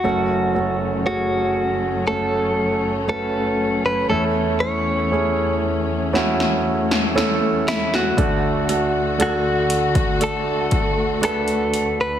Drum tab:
HH |----------------|----------------|x-x-x-xxx-x-xxx-|
SD |----------------|--------oo-oo-oo|--r-r-------r---|
BD |----------------|----------------|o------o--o-----|